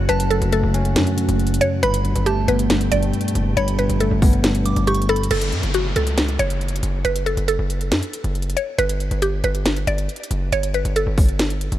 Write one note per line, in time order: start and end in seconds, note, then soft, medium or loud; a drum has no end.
0.00 0.09 F#2 loud
0.00 1.80 C#3 medium
0.00 0.52 A3 medium
0.00 1.79 A3 medium
0.00 0.74 C#4 medium
0.00 1.79 F#4 medium
0.09 0.40 F#1 loud
0.09 0.30 F#2 loud
0.09 0.26 B4 loud
0.09 0.92 A5 loud
0.09 closed hi-hat medium
0.20 closed hi-hat loud
0.30 0.95 F#2 medium
0.30 0.48 A4 medium
0.30 closed hi-hat medium
0.42 0.62 F#1 loud
0.42 closed hi-hat medium
0.52 1.61 A3 medium
0.52 1.57 A4 medium
0.52 closed hi-hat medium
0.63 0.97 F#1 loud
0.74 1.83 C#4 medium
0.74 closed hi-hat medium
0.85 closed hi-hat medium
0.96 1.06 F#2 loud
0.96 1.16 F#2 medium
0.96 snare loud
0.96 closed hi-hat medium
1.07 closed hi-hat medium
1.18 1.83 F#2 medium
1.18 closed hi-hat medium
1.29 1.60 F#1 loud
1.29 closed hi-hat medium
1.40 closed hi-hat soft
1.47 closed hi-hat medium
1.54 closed hi-hat medium
1.61 1.79 C#5 medium
1.61 closed hi-hat medium
1.83 2.14 G1 loud
1.83 2.03 G2 loud
1.83 5.27 B2 medium
1.83 5.27 A3 medium
1.83 5.27 G4 loud
1.83 2.24 B4 loud
1.83 2.24 B5 loud
1.83 closed hi-hat medium
1.94 closed hi-hat loud
2.04 2.68 G2 medium
2.04 closed hi-hat soft
2.16 2.47 G1 loud
2.16 closed hi-hat medium
2.26 3.35 A3 loud
2.26 2.44 G4 loud
2.26 2.67 A5 medium
2.26 closed hi-hat medium
2.48 2.90 G1 loud
2.48 3.57 B3 medium
2.48 2.66 B4 medium
2.48 closed hi-hat medium
2.59 closed hi-hat medium
2.70 2.91 G2 medium
2.70 snare loud
2.70 closed hi-hat medium
2.81 closed hi-hat medium
2.92 3.13 G1 loud
2.92 3.56 G2 medium
2.92 3.53 D5 medium
2.92 closed hi-hat medium
3.03 closed hi-hat medium
3.13 closed hi-hat soft
3.21 closed hi-hat medium
3.28 closed hi-hat medium
3.35 3.56 F#1 loud
3.35 closed hi-hat medium
3.57 3.88 G1 loud
3.57 3.78 G2 loud
3.57 3.74 C#5 loud
3.57 4.62 B5 loud
3.57 closed hi-hat medium
3.68 closed hi-hat loud
3.79 4.42 G2 medium
3.79 3.96 B4 medium
3.79 closed hi-hat medium
3.89 4.10 G1 loud
3.89 closed hi-hat medium
4.00 5.09 A3 medium
4.00 4.83 A4 medium
4.00 closed hi-hat medium
4.11 4.74 G1 loud
4.22 5.31 B3 medium
4.22 kick medium
4.22 open hi-hat medium
4.33 closed hi-hat medium
4.43 4.64 G2 medium
4.43 snare loud
4.43 closed hi-hat medium
4.55 closed hi-hat medium
4.66 5.31 G2 medium
4.66 4.86 D6 medium
4.66 closed hi-hat medium
4.76 5.29 G1 loud
4.76 closed hi-hat soft
4.87 5.05 G4 medium
4.87 5.08 C#6 loud
4.87 closed hi-hat medium
4.94 closed hi-hat medium
5.02 closed hi-hat medium
5.09 5.27 A4 loud
5.09 5.30 B5 medium
5.09 closed hi-hat soft
5.16 closed hi-hat medium
5.23 closed hi-hat medium
5.31 5.54 F#1 loud
5.31 5.72 A4 loud
5.31 closed hi-hat medium
5.31 crash loud
5.31 downlifter medium
5.41 closed hi-hat loud
5.52 5.63 F#2 loud
5.52 closed hi-hat soft
5.63 5.95 F#1 loud
5.63 closed hi-hat medium
5.74 5.92 F#4 medium
5.74 closed hi-hat medium
5.96 6.38 C#2 loud
5.96 6.13 A4 medium
5.96 closed hi-hat medium
6.07 closed hi-hat medium
6.18 snare loud
6.18 closed hi-hat medium
6.28 closed hi-hat medium
6.39 6.81 F#1 loud
6.39 7.01 C#5 medium
6.39 closed hi-hat medium
6.50 closed hi-hat medium
6.61 closed hi-hat soft
6.68 closed hi-hat medium
6.76 closed hi-hat medium
6.83 7.04 F#1 loud
6.83 closed hi-hat medium
7.05 7.36 F#1 loud
7.05 7.22 B4 loud
7.05 closed hi-hat medium
7.16 closed hi-hat loud
7.26 7.44 A4 medium
7.26 closed hi-hat soft
7.37 7.58 F#1 loud
7.37 closed hi-hat medium
7.48 8.53 A4 medium
7.48 closed hi-hat medium
7.59 7.93 F#1 loud
7.70 closed hi-hat medium
7.81 closed hi-hat medium
7.92 8.02 F#2 loud
7.92 snare loud
7.92 closed hi-hat medium
8.03 closed hi-hat medium
8.13 closed hi-hat medium
8.24 8.55 F#1 loud
8.24 closed hi-hat soft
8.35 closed hi-hat soft
8.42 closed hi-hat medium
8.50 closed hi-hat medium
8.57 8.74 C#5 medium
8.57 closed hi-hat medium
8.78 9.10 G1 loud
8.78 9.19 B4 loud
8.78 closed hi-hat medium
8.89 closed hi-hat loud
9.00 closed hi-hat soft
9.11 9.42 G1 loud
9.11 closed hi-hat medium
9.22 9.40 G4 medium
9.22 closed hi-hat medium
9.44 9.85 G1 loud
9.44 9.61 B4 medium
9.44 closed hi-hat medium
9.55 closed hi-hat medium
9.66 snare loud
9.66 closed hi-hat medium
9.76 closed hi-hat medium
9.87 10.08 G1 loud
9.87 10.49 D5 medium
9.87 closed hi-hat medium
9.98 closed hi-hat medium
10.09 closed hi-hat soft
10.16 closed hi-hat medium
10.24 closed hi-hat medium
10.31 10.52 F#1 loud
10.31 closed hi-hat medium
10.52 10.84 G1 loud
10.52 10.70 C#5 loud
10.52 closed hi-hat medium
10.63 closed hi-hat loud
10.74 10.92 B4 medium
10.74 closed hi-hat soft
10.85 11.06 G1 loud
10.85 closed hi-hat medium
10.96 11.79 A4 medium
10.96 closed hi-hat medium
11.07 11.69 G1 loud
11.18 kick medium
11.18 open hi-hat medium
11.29 closed hi-hat medium
11.39 snare loud
11.39 closed hi-hat medium
11.50 closed hi-hat medium
11.61 closed hi-hat medium
11.72 11.79 G1 loud
11.72 closed hi-hat medium